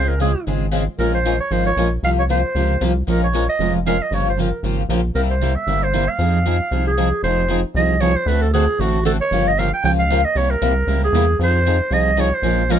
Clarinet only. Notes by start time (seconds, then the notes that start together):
0.08 A#4
0.21 G#4
0.99 A#4
1.14 C5
1.40 C#5
1.52 C5
1.66 C#5
2.04 F5
2.19 C#5
2.31 C5
3.10 A#4
3.24 C#5
3.49 D#5
3.87 F5
4.02 D#5
4.14 C#5
4.29 C5
4.41 A#4
5.15 A#4
5.30 C5
5.55 E5
5.83 C5
6.09 F5
6.87 G#4
7.24 C5
7.76 D#5
8.01 C#5
8.16 C5
8.28 B4
8.42 A4
8.53 G#4
8.81 F#4
9.06 A4
9.21 C#5
9.48 D#5
9.59 F5
9.74 G5
9.85 G5
9.99 F5
10.25 D#5
10.37 C#5
10.51 A#4
11.04 G#4
11.43 C5
11.93 D#5
12.20 C#5
12.34 C5
12.72 A#4